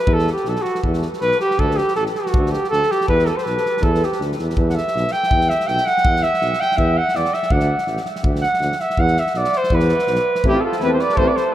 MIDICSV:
0, 0, Header, 1, 7, 480
1, 0, Start_track
1, 0, Key_signature, 1, "minor"
1, 0, Tempo, 373134
1, 118, Time_signature, 2, 2, 24, 8
1, 6358, Tempo, 366748
1, 15001, End_track
2, 0, Start_track
2, 0, Title_t, "Cornet"
2, 0, Program_c, 0, 56
2, 0, Note_on_c, 0, 71, 96
2, 170, Note_on_c, 0, 69, 109
2, 189, Note_off_c, 0, 71, 0
2, 387, Note_off_c, 0, 69, 0
2, 410, Note_on_c, 0, 67, 76
2, 634, Note_on_c, 0, 69, 90
2, 653, Note_off_c, 0, 67, 0
2, 799, Note_on_c, 0, 66, 81
2, 818, Note_off_c, 0, 69, 0
2, 1023, Note_off_c, 0, 66, 0
2, 1562, Note_on_c, 0, 71, 105
2, 1790, Note_off_c, 0, 71, 0
2, 1814, Note_on_c, 0, 67, 97
2, 2050, Note_on_c, 0, 69, 96
2, 2069, Note_off_c, 0, 67, 0
2, 2277, Note_on_c, 0, 67, 88
2, 2296, Note_off_c, 0, 69, 0
2, 2517, Note_off_c, 0, 67, 0
2, 2524, Note_on_c, 0, 69, 92
2, 2635, Note_off_c, 0, 69, 0
2, 2749, Note_on_c, 0, 66, 77
2, 3236, Note_on_c, 0, 67, 80
2, 3255, Note_off_c, 0, 66, 0
2, 3469, Note_off_c, 0, 67, 0
2, 3476, Note_on_c, 0, 69, 107
2, 3748, Note_on_c, 0, 67, 95
2, 3767, Note_off_c, 0, 69, 0
2, 3966, Note_off_c, 0, 67, 0
2, 3974, Note_on_c, 0, 71, 91
2, 4205, Note_on_c, 0, 69, 81
2, 4224, Note_off_c, 0, 71, 0
2, 4331, Note_on_c, 0, 72, 70
2, 4350, Note_off_c, 0, 69, 0
2, 4423, Note_on_c, 0, 71, 91
2, 4442, Note_off_c, 0, 72, 0
2, 4931, Note_on_c, 0, 69, 87
2, 4950, Note_off_c, 0, 71, 0
2, 5207, Note_on_c, 0, 67, 73
2, 5226, Note_off_c, 0, 69, 0
2, 5426, Note_off_c, 0, 67, 0
2, 6041, Note_on_c, 0, 78, 71
2, 6119, Note_on_c, 0, 76, 93
2, 6138, Note_off_c, 0, 78, 0
2, 6593, Note_on_c, 0, 79, 105
2, 6612, Note_off_c, 0, 76, 0
2, 7083, Note_on_c, 0, 76, 91
2, 7103, Note_off_c, 0, 79, 0
2, 7320, Note_on_c, 0, 79, 111
2, 7339, Note_off_c, 0, 76, 0
2, 7558, Note_on_c, 0, 78, 101
2, 7578, Note_off_c, 0, 79, 0
2, 8046, Note_on_c, 0, 76, 106
2, 8065, Note_off_c, 0, 78, 0
2, 8540, Note_on_c, 0, 79, 99
2, 8560, Note_off_c, 0, 76, 0
2, 8751, Note_on_c, 0, 76, 87
2, 8771, Note_off_c, 0, 79, 0
2, 9024, Note_on_c, 0, 78, 89
2, 9044, Note_off_c, 0, 76, 0
2, 9262, Note_on_c, 0, 74, 85
2, 9282, Note_off_c, 0, 78, 0
2, 9497, Note_on_c, 0, 76, 92
2, 9517, Note_off_c, 0, 74, 0
2, 9728, Note_on_c, 0, 78, 78
2, 9747, Note_off_c, 0, 76, 0
2, 10208, Note_off_c, 0, 78, 0
2, 10905, Note_on_c, 0, 78, 90
2, 11419, Note_on_c, 0, 76, 98
2, 11439, Note_off_c, 0, 78, 0
2, 11671, Note_on_c, 0, 78, 116
2, 11690, Note_off_c, 0, 76, 0
2, 11926, Note_on_c, 0, 76, 90
2, 11945, Note_off_c, 0, 78, 0
2, 12156, Note_on_c, 0, 74, 101
2, 12176, Note_off_c, 0, 76, 0
2, 12422, Note_on_c, 0, 72, 103
2, 12441, Note_off_c, 0, 74, 0
2, 12647, Note_on_c, 0, 71, 90
2, 12667, Note_off_c, 0, 72, 0
2, 13583, Note_off_c, 0, 71, 0
2, 13604, Note_on_c, 0, 67, 105
2, 13770, Note_on_c, 0, 69, 73
2, 13789, Note_off_c, 0, 67, 0
2, 13823, Note_off_c, 0, 69, 0
2, 13831, Note_on_c, 0, 69, 77
2, 14040, Note_off_c, 0, 69, 0
2, 14071, Note_on_c, 0, 71, 99
2, 14181, Note_off_c, 0, 71, 0
2, 14202, Note_on_c, 0, 72, 82
2, 14295, Note_on_c, 0, 74, 101
2, 14315, Note_off_c, 0, 72, 0
2, 14514, Note_on_c, 0, 72, 110
2, 14534, Note_off_c, 0, 74, 0
2, 14652, Note_on_c, 0, 74, 92
2, 14672, Note_off_c, 0, 72, 0
2, 14769, Note_on_c, 0, 72, 90
2, 14789, Note_off_c, 0, 74, 0
2, 14995, Note_off_c, 0, 72, 0
2, 15001, End_track
3, 0, Start_track
3, 0, Title_t, "Flugelhorn"
3, 0, Program_c, 1, 56
3, 13580, Note_on_c, 1, 64, 82
3, 13698, Note_on_c, 1, 65, 59
3, 13718, Note_off_c, 1, 64, 0
3, 13790, Note_off_c, 1, 65, 0
3, 13798, Note_on_c, 1, 65, 69
3, 14005, Note_off_c, 1, 65, 0
3, 14013, Note_on_c, 1, 64, 82
3, 14132, Note_off_c, 1, 64, 0
3, 14140, Note_on_c, 1, 69, 70
3, 14240, Note_on_c, 1, 71, 73
3, 14260, Note_off_c, 1, 69, 0
3, 14469, Note_on_c, 1, 69, 85
3, 14489, Note_off_c, 1, 71, 0
3, 14619, Note_on_c, 1, 71, 64
3, 14638, Note_off_c, 1, 69, 0
3, 14733, Note_on_c, 1, 69, 79
3, 14753, Note_off_c, 1, 71, 0
3, 15001, Note_off_c, 1, 69, 0
3, 15001, End_track
4, 0, Start_track
4, 0, Title_t, "French horn"
4, 0, Program_c, 2, 60
4, 13568, Note_on_c, 2, 60, 55
4, 13758, Note_off_c, 2, 60, 0
4, 14061, Note_on_c, 2, 60, 71
4, 14249, Note_off_c, 2, 60, 0
4, 14538, Note_on_c, 2, 60, 64
4, 14726, Note_off_c, 2, 60, 0
4, 15001, End_track
5, 0, Start_track
5, 0, Title_t, "Euphonium"
5, 0, Program_c, 3, 58
5, 13550, Note_on_c, 3, 57, 62
5, 13744, Note_off_c, 3, 57, 0
5, 14029, Note_on_c, 3, 57, 53
5, 14223, Note_off_c, 3, 57, 0
5, 14518, Note_on_c, 3, 57, 81
5, 14709, Note_off_c, 3, 57, 0
5, 15001, End_track
6, 0, Start_track
6, 0, Title_t, "Tuba"
6, 0, Program_c, 4, 58
6, 91, Note_on_c, 4, 40, 99
6, 365, Note_off_c, 4, 40, 0
6, 582, Note_on_c, 4, 35, 82
6, 721, Note_off_c, 4, 35, 0
6, 1071, Note_on_c, 4, 40, 84
6, 1341, Note_off_c, 4, 40, 0
6, 1565, Note_on_c, 4, 35, 77
6, 1699, Note_off_c, 4, 35, 0
6, 2027, Note_on_c, 4, 38, 89
6, 2299, Note_off_c, 4, 38, 0
6, 2532, Note_on_c, 4, 33, 75
6, 2665, Note_off_c, 4, 33, 0
6, 3011, Note_on_c, 4, 38, 88
6, 3276, Note_off_c, 4, 38, 0
6, 3498, Note_on_c, 4, 38, 76
6, 3628, Note_off_c, 4, 38, 0
6, 3969, Note_on_c, 4, 40, 97
6, 4233, Note_off_c, 4, 40, 0
6, 4457, Note_on_c, 4, 35, 83
6, 4587, Note_off_c, 4, 35, 0
6, 4906, Note_on_c, 4, 40, 99
6, 5174, Note_off_c, 4, 40, 0
6, 5392, Note_on_c, 4, 38, 75
6, 5613, Note_off_c, 4, 38, 0
6, 5634, Note_on_c, 4, 40, 76
6, 5853, Note_off_c, 4, 40, 0
6, 5873, Note_on_c, 4, 40, 91
6, 6137, Note_off_c, 4, 40, 0
6, 6372, Note_on_c, 4, 35, 85
6, 6501, Note_off_c, 4, 35, 0
6, 6838, Note_on_c, 4, 40, 88
6, 7104, Note_off_c, 4, 40, 0
6, 7333, Note_on_c, 4, 35, 81
6, 7463, Note_off_c, 4, 35, 0
6, 7807, Note_on_c, 4, 40, 84
6, 8072, Note_off_c, 4, 40, 0
6, 8285, Note_on_c, 4, 35, 79
6, 8418, Note_off_c, 4, 35, 0
6, 8756, Note_on_c, 4, 40, 98
6, 9024, Note_off_c, 4, 40, 0
6, 9234, Note_on_c, 4, 40, 77
6, 9370, Note_off_c, 4, 40, 0
6, 9715, Note_on_c, 4, 38, 105
6, 9983, Note_off_c, 4, 38, 0
6, 10191, Note_on_c, 4, 33, 76
6, 10328, Note_off_c, 4, 33, 0
6, 10657, Note_on_c, 4, 38, 88
6, 10929, Note_off_c, 4, 38, 0
6, 11143, Note_on_c, 4, 38, 85
6, 11282, Note_off_c, 4, 38, 0
6, 11639, Note_on_c, 4, 40, 105
6, 11904, Note_off_c, 4, 40, 0
6, 12121, Note_on_c, 4, 35, 74
6, 12254, Note_off_c, 4, 35, 0
6, 12600, Note_on_c, 4, 40, 112
6, 12865, Note_off_c, 4, 40, 0
6, 13080, Note_on_c, 4, 35, 92
6, 13212, Note_off_c, 4, 35, 0
6, 13560, Note_on_c, 4, 33, 98
6, 13692, Note_off_c, 4, 33, 0
6, 14027, Note_on_c, 4, 40, 77
6, 14294, Note_off_c, 4, 40, 0
6, 14515, Note_on_c, 4, 33, 93
6, 14648, Note_off_c, 4, 33, 0
6, 15001, End_track
7, 0, Start_track
7, 0, Title_t, "Drums"
7, 91, Note_on_c, 9, 36, 90
7, 220, Note_off_c, 9, 36, 0
7, 245, Note_on_c, 9, 38, 23
7, 350, Note_off_c, 9, 38, 0
7, 350, Note_on_c, 9, 38, 27
7, 470, Note_off_c, 9, 38, 0
7, 470, Note_on_c, 9, 38, 20
7, 582, Note_off_c, 9, 38, 0
7, 582, Note_on_c, 9, 38, 29
7, 711, Note_off_c, 9, 38, 0
7, 718, Note_on_c, 9, 38, 25
7, 834, Note_off_c, 9, 38, 0
7, 834, Note_on_c, 9, 38, 28
7, 962, Note_off_c, 9, 38, 0
7, 965, Note_on_c, 9, 38, 26
7, 1074, Note_on_c, 9, 36, 73
7, 1093, Note_off_c, 9, 38, 0
7, 1202, Note_off_c, 9, 36, 0
7, 1203, Note_on_c, 9, 38, 23
7, 1311, Note_off_c, 9, 38, 0
7, 1311, Note_on_c, 9, 38, 29
7, 1440, Note_off_c, 9, 38, 0
7, 1456, Note_on_c, 9, 38, 22
7, 1556, Note_off_c, 9, 38, 0
7, 1556, Note_on_c, 9, 38, 25
7, 1685, Note_off_c, 9, 38, 0
7, 1693, Note_on_c, 9, 38, 21
7, 1802, Note_off_c, 9, 38, 0
7, 1802, Note_on_c, 9, 38, 25
7, 1930, Note_off_c, 9, 38, 0
7, 1939, Note_on_c, 9, 38, 26
7, 2045, Note_on_c, 9, 36, 82
7, 2068, Note_off_c, 9, 38, 0
7, 2174, Note_off_c, 9, 36, 0
7, 2199, Note_on_c, 9, 38, 21
7, 2290, Note_off_c, 9, 38, 0
7, 2290, Note_on_c, 9, 38, 30
7, 2419, Note_off_c, 9, 38, 0
7, 2419, Note_on_c, 9, 38, 24
7, 2514, Note_off_c, 9, 38, 0
7, 2514, Note_on_c, 9, 38, 24
7, 2643, Note_off_c, 9, 38, 0
7, 2651, Note_on_c, 9, 38, 23
7, 2769, Note_off_c, 9, 38, 0
7, 2769, Note_on_c, 9, 38, 26
7, 2898, Note_off_c, 9, 38, 0
7, 2911, Note_on_c, 9, 38, 28
7, 3008, Note_on_c, 9, 36, 105
7, 3039, Note_off_c, 9, 38, 0
7, 3137, Note_off_c, 9, 36, 0
7, 3167, Note_on_c, 9, 38, 23
7, 3262, Note_off_c, 9, 38, 0
7, 3262, Note_on_c, 9, 38, 31
7, 3390, Note_off_c, 9, 38, 0
7, 3399, Note_on_c, 9, 38, 20
7, 3509, Note_off_c, 9, 38, 0
7, 3509, Note_on_c, 9, 38, 30
7, 3637, Note_off_c, 9, 38, 0
7, 3638, Note_on_c, 9, 38, 23
7, 3748, Note_off_c, 9, 38, 0
7, 3748, Note_on_c, 9, 38, 29
7, 3870, Note_off_c, 9, 38, 0
7, 3870, Note_on_c, 9, 38, 28
7, 3966, Note_on_c, 9, 36, 76
7, 3998, Note_off_c, 9, 38, 0
7, 4095, Note_off_c, 9, 36, 0
7, 4105, Note_on_c, 9, 38, 21
7, 4192, Note_off_c, 9, 38, 0
7, 4192, Note_on_c, 9, 38, 30
7, 4320, Note_off_c, 9, 38, 0
7, 4350, Note_on_c, 9, 38, 24
7, 4452, Note_off_c, 9, 38, 0
7, 4452, Note_on_c, 9, 38, 31
7, 4581, Note_off_c, 9, 38, 0
7, 4601, Note_on_c, 9, 38, 22
7, 4707, Note_off_c, 9, 38, 0
7, 4707, Note_on_c, 9, 38, 29
7, 4835, Note_off_c, 9, 38, 0
7, 4851, Note_on_c, 9, 38, 26
7, 4925, Note_on_c, 9, 36, 91
7, 4980, Note_off_c, 9, 38, 0
7, 5054, Note_off_c, 9, 36, 0
7, 5078, Note_on_c, 9, 38, 25
7, 5185, Note_off_c, 9, 38, 0
7, 5185, Note_on_c, 9, 38, 29
7, 5306, Note_off_c, 9, 38, 0
7, 5306, Note_on_c, 9, 38, 26
7, 5420, Note_off_c, 9, 38, 0
7, 5420, Note_on_c, 9, 38, 30
7, 5549, Note_off_c, 9, 38, 0
7, 5556, Note_on_c, 9, 38, 23
7, 5646, Note_off_c, 9, 38, 0
7, 5646, Note_on_c, 9, 38, 31
7, 5774, Note_off_c, 9, 38, 0
7, 5788, Note_on_c, 9, 38, 29
7, 5877, Note_on_c, 9, 36, 90
7, 5917, Note_off_c, 9, 38, 0
7, 6005, Note_off_c, 9, 36, 0
7, 6043, Note_on_c, 9, 38, 27
7, 6144, Note_off_c, 9, 38, 0
7, 6144, Note_on_c, 9, 38, 33
7, 6273, Note_off_c, 9, 38, 0
7, 6273, Note_on_c, 9, 38, 27
7, 6394, Note_off_c, 9, 38, 0
7, 6394, Note_on_c, 9, 38, 30
7, 6524, Note_off_c, 9, 38, 0
7, 6534, Note_on_c, 9, 38, 30
7, 6609, Note_off_c, 9, 38, 0
7, 6609, Note_on_c, 9, 38, 25
7, 6738, Note_off_c, 9, 38, 0
7, 6738, Note_on_c, 9, 38, 31
7, 6838, Note_on_c, 9, 36, 95
7, 6869, Note_off_c, 9, 38, 0
7, 6969, Note_off_c, 9, 36, 0
7, 6970, Note_on_c, 9, 38, 25
7, 7088, Note_off_c, 9, 38, 0
7, 7088, Note_on_c, 9, 38, 37
7, 7219, Note_off_c, 9, 38, 0
7, 7221, Note_on_c, 9, 38, 28
7, 7322, Note_off_c, 9, 38, 0
7, 7322, Note_on_c, 9, 38, 30
7, 7449, Note_off_c, 9, 38, 0
7, 7449, Note_on_c, 9, 38, 32
7, 7568, Note_off_c, 9, 38, 0
7, 7568, Note_on_c, 9, 38, 28
7, 7699, Note_off_c, 9, 38, 0
7, 7709, Note_on_c, 9, 38, 29
7, 7802, Note_on_c, 9, 36, 97
7, 7839, Note_off_c, 9, 38, 0
7, 7933, Note_off_c, 9, 36, 0
7, 7954, Note_on_c, 9, 38, 27
7, 8040, Note_off_c, 9, 38, 0
7, 8040, Note_on_c, 9, 38, 31
7, 8171, Note_off_c, 9, 38, 0
7, 8187, Note_on_c, 9, 38, 26
7, 8285, Note_off_c, 9, 38, 0
7, 8285, Note_on_c, 9, 38, 30
7, 8415, Note_off_c, 9, 38, 0
7, 8440, Note_on_c, 9, 38, 30
7, 8550, Note_off_c, 9, 38, 0
7, 8550, Note_on_c, 9, 38, 32
7, 8681, Note_off_c, 9, 38, 0
7, 8681, Note_on_c, 9, 38, 30
7, 8767, Note_on_c, 9, 36, 79
7, 8811, Note_off_c, 9, 38, 0
7, 8898, Note_off_c, 9, 36, 0
7, 9163, Note_on_c, 9, 38, 26
7, 9252, Note_off_c, 9, 38, 0
7, 9252, Note_on_c, 9, 38, 30
7, 9380, Note_off_c, 9, 38, 0
7, 9380, Note_on_c, 9, 38, 26
7, 9491, Note_off_c, 9, 38, 0
7, 9491, Note_on_c, 9, 38, 32
7, 9609, Note_off_c, 9, 38, 0
7, 9609, Note_on_c, 9, 38, 29
7, 9711, Note_on_c, 9, 36, 95
7, 9740, Note_off_c, 9, 38, 0
7, 9833, Note_on_c, 9, 38, 29
7, 9842, Note_off_c, 9, 36, 0
7, 9964, Note_off_c, 9, 38, 0
7, 10076, Note_on_c, 9, 38, 28
7, 10191, Note_off_c, 9, 38, 0
7, 10191, Note_on_c, 9, 38, 29
7, 10321, Note_off_c, 9, 38, 0
7, 10321, Note_on_c, 9, 38, 32
7, 10432, Note_off_c, 9, 38, 0
7, 10432, Note_on_c, 9, 38, 30
7, 10563, Note_off_c, 9, 38, 0
7, 10565, Note_on_c, 9, 38, 34
7, 10675, Note_on_c, 9, 36, 95
7, 10696, Note_off_c, 9, 38, 0
7, 10806, Note_off_c, 9, 36, 0
7, 10826, Note_on_c, 9, 38, 28
7, 10925, Note_off_c, 9, 38, 0
7, 10925, Note_on_c, 9, 38, 34
7, 11056, Note_off_c, 9, 38, 0
7, 11065, Note_on_c, 9, 38, 24
7, 11166, Note_off_c, 9, 38, 0
7, 11166, Note_on_c, 9, 38, 30
7, 11297, Note_off_c, 9, 38, 0
7, 11304, Note_on_c, 9, 38, 28
7, 11407, Note_off_c, 9, 38, 0
7, 11407, Note_on_c, 9, 38, 24
7, 11537, Note_off_c, 9, 38, 0
7, 11539, Note_on_c, 9, 38, 25
7, 11634, Note_on_c, 9, 36, 81
7, 11670, Note_off_c, 9, 38, 0
7, 11765, Note_off_c, 9, 36, 0
7, 11768, Note_on_c, 9, 38, 19
7, 11889, Note_off_c, 9, 38, 0
7, 11889, Note_on_c, 9, 38, 30
7, 12019, Note_off_c, 9, 38, 0
7, 12019, Note_on_c, 9, 38, 25
7, 12116, Note_off_c, 9, 38, 0
7, 12116, Note_on_c, 9, 38, 30
7, 12247, Note_off_c, 9, 38, 0
7, 12249, Note_on_c, 9, 38, 27
7, 12357, Note_off_c, 9, 38, 0
7, 12357, Note_on_c, 9, 38, 27
7, 12488, Note_off_c, 9, 38, 0
7, 12502, Note_on_c, 9, 38, 33
7, 12588, Note_on_c, 9, 36, 85
7, 12633, Note_off_c, 9, 38, 0
7, 12714, Note_on_c, 9, 38, 28
7, 12719, Note_off_c, 9, 36, 0
7, 12830, Note_off_c, 9, 38, 0
7, 12830, Note_on_c, 9, 38, 37
7, 12961, Note_off_c, 9, 38, 0
7, 12963, Note_on_c, 9, 38, 27
7, 13068, Note_off_c, 9, 38, 0
7, 13068, Note_on_c, 9, 38, 34
7, 13180, Note_off_c, 9, 38, 0
7, 13180, Note_on_c, 9, 38, 30
7, 13311, Note_off_c, 9, 38, 0
7, 13439, Note_on_c, 9, 38, 36
7, 13551, Note_on_c, 9, 36, 89
7, 13570, Note_off_c, 9, 38, 0
7, 13682, Note_off_c, 9, 36, 0
7, 13924, Note_on_c, 9, 38, 28
7, 14031, Note_off_c, 9, 38, 0
7, 14031, Note_on_c, 9, 38, 30
7, 14162, Note_off_c, 9, 38, 0
7, 14277, Note_on_c, 9, 38, 23
7, 14408, Note_off_c, 9, 38, 0
7, 14410, Note_on_c, 9, 38, 30
7, 14511, Note_on_c, 9, 36, 85
7, 14540, Note_off_c, 9, 38, 0
7, 14642, Note_off_c, 9, 36, 0
7, 14770, Note_on_c, 9, 38, 32
7, 14900, Note_off_c, 9, 38, 0
7, 15001, End_track
0, 0, End_of_file